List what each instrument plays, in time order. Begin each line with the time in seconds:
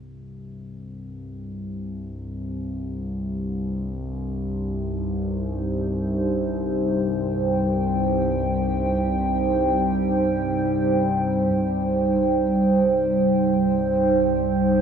Already playing: synth drone C2 G2
3.90 analog synth pad G3
4.37 analog synth pad D#4
5.04 analog synth pad C5
6.47 analog synth pad G5
11.53 synth drone C2 G2